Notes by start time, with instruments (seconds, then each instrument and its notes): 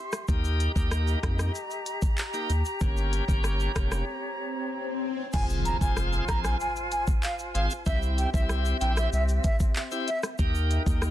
Already playing: flute section G4 E5 C6
0.12 cross-stick, shaker
0.28 sub bass D#2, tonewheel organ A#3 D#4 G4, flute section G4 D#5 A#5, kick, swell, shaker
0.44 shaker
0.60 closed hi-hat, shaker
0.75 sub bass D#2, tonewheel organ A#3 D#4 G4, kick, shaker
0.91 cross-stick, shaker
1.07 shaker
1.23 sub bass F2, tonewheel organ A#3 D#4 G4, kick, cross-stick, closed hi-hat, shaker
1.39 cross-stick, shaker
1.55 shaker
1.71 shaker
1.86 closed hi-hat, shaker
2.02 kick, shaker
2.18 clap, shaker
2.33 tonewheel organ A#3 D#4 G4, shaker
2.50 sub bass D#2, closed hi-hat, shaker
2.65 shaker
2.80 sub bass G1, tonewheel organ A#3 C#4 G4, flute section C#5, kick, shaker
2.97 shaker
3.13 closed hi-hat, shaker
3.28 sub bass G1, tonewheel organ A#3 C#4 G4, kick, shaker
3.44 cross-stick, shaker
3.60 shaker
3.75 sub bass F1, tonewheel organ A#3 C#4 G4, kick, cross-stick, closed hi-hat, shaker
3.92 cross-stick, shaker
5.33 sub bass F1, tonewheel organ C4 F4 G#4, flute section F4 C5 G#5, flute G#5, kick, crash, impact, shaker
5.50 shaker
5.65 flute A#5, closed hi-hat, shaker
5.81 sub bass F1, tonewheel organ C4 F4 G#4, flute G#5, kick, shaker
5.97 cross-stick, shaker
6.13 shaker
6.28 sub bass A#1, tonewheel organ C4 F4 G#4, flute A#5, kick, cross-stick, closed hi-hat, shaker
6.44 flute G#5, cross-stick, shaker
6.60 flute G#5, shaker
6.76 shaker
6.92 flute G#5, closed hi-hat, shaker
7.07 kick, shaker
7.23 flute F5, clap, shaker
7.38 shaker
7.55 sub bass G#1, tonewheel organ C4 F4 G#4, flute F5, closed hi-hat, shaker
7.70 shaker
7.86 sub bass C2, tonewheel organ C4 E4 G4, flute section C4 G4 E5, flute E5, kick, shaker
8.02 shaker
8.18 flute G5, closed hi-hat, shaker
8.34 sub bass C2, tonewheel organ C4 E4 G4, flute E5, kick, shaker
8.49 cross-stick, shaker
8.65 shaker
8.81 sub bass A#1, tonewheel organ C4 E4 G4, flute G5, closed hi-hat, shaker
8.97 flute E5, cross-stick, shaker
9.13 sub bass C2, flute E5, shaker
9.28 shaker
9.44 flute E5, kick, closed hi-hat, shaker
9.60 kick, shaker
9.76 clap, shaker
9.91 tonewheel organ C4 E4 G4, shaker
10.07 flute E5, closed hi-hat, shaker
10.23 cross-stick, shaker
10.38 sub bass D#2, tonewheel organ A#3 D#4 G4, flute section D#4 A#4 G5, kick, shaker
10.55 shaker
10.71 closed hi-hat, shaker
10.86 sub bass D#2, tonewheel organ A#3 D#4 G4, kick, shaker
11.02 cross-stick, shaker